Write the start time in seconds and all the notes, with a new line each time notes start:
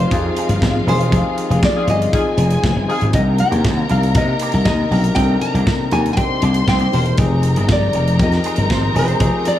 Already playing: D#3 F3 G#3 C4 D#4 F4 G4 G#4 C5 F5
0.00 muted clean electric guitar stroke, closed hi-hat
0.10 F2 F3 C4 D#4 G4 G#4, muted clean electric guitar stroke, kick, closed hi-hat
0.25 muted clean electric guitar stroke
0.37 F3 C4 D#4 G#4, closed hi-hat
0.49 G1, muted clean electric guitar stroke, closed hi-hat
0.62 G#1, muted clean electric guitar stroke, kick, snare
0.75 muted clean electric guitar stroke
0.86 E1 F3 C4 D#4 G4 G#4 C5, open hi-hat
0.99 F3 C4 D#4 G#4, closed hi-hat
1.11 F1 F3 C4 D#4 G4 G#4, kick, closed hi-hat
1.38 closed hi-hat
1.50 F1 F3 C4 D#4 G#4, closed hi-hat
1.63 D5, kick, snare
1.75 D#4 F4 G#4, muted clean electric guitar stroke
1.87 G1 F3 C4 D#4 G#4 D#5, closed hi-hat
2.02 closed hi-hat
2.12 F3 C4 D#4 F4 G#4 G#5, muted clean electric guitar stroke, kick, closed hi-hat
2.26 muted clean electric guitar stroke
2.37 F1 F3 C4 D#4 G#4, closed hi-hat
2.51 muted clean electric guitar stroke, closed hi-hat
2.64 F1, muted clean electric guitar stroke, kick, snare
2.76 G1, muted clean electric guitar stroke
2.88 F3 C4 D#4 F4 G4 G#4, open hi-hat
3.01 G#1 F3 C4 D#4 G#4, closed hi-hat
3.13 C2 C3 D#3 G3 A#3 C4 D4 D#4 G4 A#4 D#5 A#5, kick, closed hi-hat
3.38 G5, closed hi-hat
3.51 D#2 D#3 A#3 D4 G4, closed hi-hat
3.65 D#2, kick, snare
3.77 muted clean electric guitar stroke
3.89 C2 D#3 A#3 D4 A#4 F5, closed hi-hat
4.03 closed hi-hat
4.15 C3 A#3 C4 D#4 A#4 D#5, muted clean electric guitar stroke, kick, closed hi-hat
4.28 muted clean electric guitar stroke
4.39 D#3 A#3 D4 G4, closed hi-hat
4.52 C2, muted clean electric guitar stroke, closed hi-hat
4.65 D#2 D#5, muted clean electric guitar stroke, kick, snare
4.80 muted clean electric guitar stroke
4.91 B1 C3 D#3 A#3 C4 D4 D#4 G4 A#4, open hi-hat
5.04 D#3 A#3 D4 G4, closed hi-hat
5.15 C2 C3 D#3 A#3 C4 D4 D#4 G4 A4 G5, kick, closed hi-hat
5.23 A#4
5.41 A#5, muted clean electric guitar stroke, closed hi-hat
5.54 C2 D#3 A#3 D4 G4, closed hi-hat
5.67 muted clean electric guitar stroke, kick, snare
5.80 muted clean electric guitar stroke
5.91 D#2 D#3 A#3 D4 G4 G#5, closed hi-hat
6.06 closed hi-hat
6.13 G5 G#5, closed hi-hat
6.17 C3 C4 D4 D#4 G4 C5 C6, muted clean electric guitar stroke, kick
6.31 muted clean electric guitar stroke
6.42 C2 D#3 A#3 D4 G4, closed hi-hat
6.54 closed hi-hat
6.68 C2 G5, muted clean electric guitar stroke, kick, snare
6.79 D#3 A#3 D4 G4, closed hi-hat
6.93 E1 C3 D#3 A#3 C4 D4 D#4 G4 A#4 C5, open hi-hat
7.06 closed hi-hat
7.17 F1 F3 G#3 C4 D#4 G4 G#4 A#4 G5 A#5, kick, closed hi-hat
7.43 closed hi-hat
7.56 G1 G#3 C4 D#4 G#4, closed hi-hat
7.69 G1 D5, kick, snare
7.83 muted clean electric guitar stroke
7.93 F1 G#3 C4 D#4 A#4, closed hi-hat
8.08 muted clean electric guitar stroke, closed hi-hat
8.19 F2 F3 C4 D#4 G4 A#4 D#5, muted clean electric guitar stroke, kick, closed hi-hat
8.32 muted clean electric guitar stroke, snare, closed hi-hat
8.44 G#3 C4 D#4 G#4, closed hi-hat
8.56 G1, closed hi-hat
8.70 G#1 C5, muted clean electric guitar stroke, kick, snare
8.82 muted clean electric guitar stroke
8.95 E1 F3 G#3 C4 D#4 G4 G#4 C5, open hi-hat
9.08 G#3 C4 D#4 G#4, closed hi-hat
9.19 F1 F3 G#3 C4 D#4 F4 G4 G#4, kick, closed hi-hat
9.45 D5, muted clean electric guitar stroke, closed hi-hat